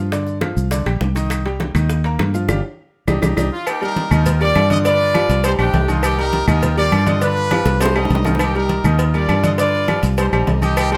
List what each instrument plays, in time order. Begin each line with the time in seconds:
Already playing: fingered electric bass G2
0.12 grand piano D3 D4 D5, high bongo, high conga, high timbale, maracas
0.27 high bongo, high conga, maracas
0.41 grand piano F3 F4 F5, high bongo, high conga, high timbale, claves, maracas
0.57 fingered electric bass C2, high conga, maracas
0.71 grand piano D3 D4 D5, high bongo, high conga, high timbale, maracas
0.86 fingered electric bass A#1, grand piano G3 G4 G5, high bongo, high conga, high timbale, claves, maracas
1.01 fingered electric bass C2, high bongo, low bongo, high conga, maracas
1.15 grand piano D#3 D#4 D#5, high bongo, high conga, high timbale, maracas
1.30 high bongo, high conga, high timbale, claves, maracas
1.45 grand piano G3 G4 G5, high bongo, high conga, high timbale, maracas
1.60 high bongo, high conga, high timbale, maracas
1.75 fingered electric bass D#2, grand piano D#3 D#4 D#5, high conga, low conga, high timbale, claves, maracas
1.90 high bongo, maracas
2.04 grand piano A#3 A#4 A#5, high bongo, high conga, high timbale, maracas
2.19 fingered electric bass G2, high bongo, low bongo, high conga, high timbale, claves, maracas
2.34 grand piano F3 F4 F5, high bongo, high conga, maracas
2.48 fingered electric bass G1, grand piano D4 F4 G4, high bongo, high conga, high timbale, claves, maracas
3.07 fingered electric bass C2, grand piano D4 D#4 G4, high bongo, high conga, high timbale, claves, maracas
3.22 fingered electric bass C2, grand piano D4 D#4 G4, high bongo, high conga, high timbale, claves, maracas
3.37 fingered electric bass C2, grand piano D4 D#4 G4, high bongo, high conga, high timbale, claves, maracas
3.52 horn section F4
3.67 horn section A#3 D#4 G4, cowbell, high conga, low agogo, claves, maracas
3.81 grand piano G3 G4 A#4, horn section D#4 G4 A#4, high conga, low agogo, maracas
3.96 cowbell, high conga, maracas
4.11 fingered electric bass D#2, grand piano D#3 D#4 D#5, horn section F4 G4 A#4, high conga, low conga, low agogo, claves, maracas
4.26 cowbell, high conga, low conga, maracas
4.41 grand piano G3 G4 A#4, horn section F4 G4 D5, low agogo, maracas
4.55 fingered electric bass G2, cowbell, high conga, low timbale, low agogo, claves, maracas
4.70 grand piano D3 D4 D5, horn section D#5, cowbell, high conga, low agogo, maracas
4.85 grand piano D3 D4 D5, horn section F4 B4 D5, cowbell, high conga, maracas
5.00 high conga, maracas
5.14 grand piano F3 F4 G4, cowbell, high conga, low agogo, claves, maracas
5.29 fingered electric bass C2, cowbell, maracas
5.44 grand piano G3 G4 C5, horn section D#4 G4 C5, cowbell, high conga, low agogo, maracas
5.59 fingered electric bass A#1, grand piano G3 G4 C5, horn section D4 D#4 G4, high conga, low agogo, claves, maracas
5.73 fingered electric bass C2, cowbell, high conga, low timbale, maracas
5.88 grand piano D#3 D#4 D#5, horn section F4, high conga, low agogo, maracas
6.03 horn section A#3 D#4 G4, cowbell, high conga, low agogo, claves, maracas
6.18 grand piano G3 G4 A#4, horn section D#4 G4 A#4, high conga, low agogo, maracas
6.33 cowbell, high conga, maracas
6.48 fingered electric bass D#2, grand piano D#3 D#4 D#5, horn section F4 G4 A#4, high conga, low conga, low agogo, claves, maracas
6.63 cowbell, high conga, low conga, maracas
6.77 grand piano G3 G4 A#4, horn section F4 G4 D5, high conga, low agogo, maracas
6.92 fingered electric bass G2, cowbell, high conga, low agogo, claves, maracas
7.06 grand piano D3 D4 D5, horn section D#5, cowbell, high conga, low agogo, maracas
7.21 grand piano D3 D4 D5, horn section D4 F4 B4, cowbell, high conga, maracas
7.37 high conga, maracas
7.51 grand piano F3 F4 G4, cowbell, high conga, high timbale, low agogo, claves, maracas
7.65 fingered electric bass C2, cowbell, high bongo, high conga, maracas
7.81 grand piano G3 G4 C5, horn section D#4 G4 C5, cowbell, high conga, low timbale, low agogo, maracas
7.86 high bongo
7.95 grand piano G3 G4 C5, horn section G4 D#5, high conga, low timbale, low agogo, claves, maracas
8.05 low bongo
8.10 fingered electric bass C2, cowbell, high conga, maracas
8.15 low bongo
8.25 grand piano D#3 D#4 D#5, horn section F4, low bongo, high conga, low timbale, low agogo, maracas
8.35 low bongo
8.39 horn section A#3 D#4 G4, cowbell, low agogo, claves, maracas
8.55 grand piano G3 G4 A#4, horn section D#4 G4 A#4, high conga, low agogo, maracas
8.69 cowbell, high conga, maracas
8.84 fingered electric bass D#2, grand piano D#3 D#4 D#5, horn section F4 G4 A#4, high conga, low conga, low agogo, claves, maracas
8.99 cowbell, high conga, maracas
9.14 grand piano G3 G4 A#4, horn section F4 G4 D5, high conga, low agogo, maracas
9.29 fingered electric bass G2, cowbell, high conga, low agogo, claves, maracas
9.43 grand piano D3 D4 D5, horn section D#5, cowbell, high conga, low agogo, maracas
9.58 grand piano D3 D4 D5, horn section F4 B4 D5, cowbell, high conga, maracas
9.74 high conga, maracas
9.87 grand piano F3 F4 G4, cowbell, high conga, low agogo, claves, maracas
10.03 fingered electric bass C2, cowbell, high conga, maracas
10.18 grand piano G3 G4 C5, horn section D#4 G4 C5, cowbell, high conga, low agogo, maracas
10.33 fingered electric bass A#1, grand piano G3 G4 C5, high conga, low agogo, claves, maracas
10.47 fingered electric bass C2, cowbell, high conga, low timbale, maracas
10.62 grand piano D#3 D#4 D#5, horn section G4, high conga, low agogo, maracas
10.77 horn section A#3 D#4 G4, cowbell, low agogo, claves, maracas
10.92 grand piano G3 G4 A#4, horn section D#4 G4 C5, high conga, low agogo, maracas